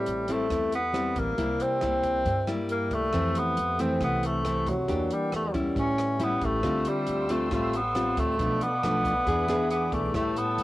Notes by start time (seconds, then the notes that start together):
Already playing: A2 G3 C4 E4 G4 A4 B4 E5
0.06 A1, closed hi-hat
0.28 G3 C4 E4, closed hi-hat
0.33 A3
0.50 E2 E3 G3 C4 E4, kick, cross-stick, closed hi-hat
0.72 B3, closed hi-hat
0.93 G3 C4 E4, cross-stick, closed hi-hat
1.16 A1 A#3, kick, closed hi-hat
1.35 C2 C3 G3 A#3 E4 G4 A#4 D5, kick, closed hi-hat
1.41 E5
1.60 C4, closed hi-hat
1.81 C2 G3 A#3 E4, cross-stick, closed hi-hat
2.03 kick, closed hi-hat
2.25 G2, kick, closed hi-hat
2.47 G3 A#3 E4, cross-stick, closed hi-hat
2.67 G4 A#4, closed hi-hat
2.72 A#3
2.91 C2 A3, kick, closed hi-hat
3.10 F2 E3 A3 C4 G4 A4, kick, cross-stick, closed hi-hat
3.15 C6
3.35 B3, closed hi-hat
3.57 F2, closed hi-hat
3.79 E3 A3 C4, closed hi-hat
4.01 C2 C3 B3, kick, cross-stick, closed hi-hat
4.23 A3, closed hi-hat
4.45 E3 A3 C4, cross-stick, closed hi-hat
4.67 F2 F#3, kick, closed hi-hat
4.85 E2 E3 A#3 D4 G4 A#4 D5, kick, closed hi-hat
4.89 G4 F#5
5.11 G3, closed hi-hat
5.32 E2 A3, cross-stick, closed hi-hat
5.54 G3 C#4 E4, kick, closed hi-hat
5.73 A1 A2 G4 B4 C#5, kick, closed hi-hat
5.79 C#4 E5
5.98 cross-stick, closed hi-hat
6.20 G3 B3 C#4 E4, closed hi-hat
6.41 A1 A3, kick, closed hi-hat
6.59 D2 D3 G4 C6, kick, cross-stick, closed hi-hat
6.63 G3 C4 F4 E5 F5 G5 C6 E6
6.85 G3, closed hi-hat
7.07 D2, closed hi-hat
7.29 G3 A3 C4 F4, closed hi-hat
7.51 A1 A2 G3 A3 C4 F4, kick, cross-stick, closed hi-hat
7.73 B3, closed hi-hat
7.95 G3 C4 F4, cross-stick, closed hi-hat
8.17 D2 A3, kick, closed hi-hat
8.35 B2 F3 A4 B4 B5
8.39 B1 A3 D4 D5 F5 D6, kick, closed hi-hat
8.61 B3, closed hi-hat
8.83 B1 F3 A3 D4, cross-stick, closed hi-hat
9.05 kick, closed hi-hat
9.24 E2 E3 B3 D4 G#4 B4 D5 E5 D6, kick, closed hi-hat
9.28 G#4 E5
9.48 B3 D4 G#4, cross-stick, closed hi-hat
9.71 B3, closed hi-hat
9.92 B1 A3, kick, closed hi-hat
10.11 A1 A2 G3 G4 B4, kick, cross-stick, closed hi-hat
10.15 A3 E4 A4 E5 G5 A5 E6
10.36 B3, closed hi-hat
10.58 A1, closed hi-hat